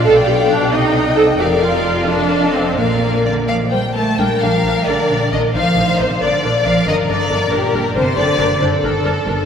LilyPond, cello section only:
\new Staff \with { instrumentName = "Cello section" } { \clef bass \time 6/8 \key bes \major \tempo 4. = 90 b,4. c4. | f,2. | bes,4 d8 f8 g8 a8 | g8 f4 d4 ees8 |
f4 c8 d4 f8 | ees8 d4 bes,4 c8 | d4 r2 | }